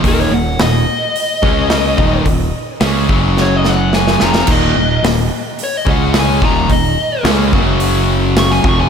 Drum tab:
CC |----------------|----------------|x---------------|----------------|
HH |o---o---o---o---|o---o-----------|----o---o---o---|o---o---o---o---|
SD |----o-------o---|----o---o-o-oooo|----o-------o---|----o-------oo--|
BD |o---------o---o-|o-----o---------|o---------o---o-|o-----o-------o-|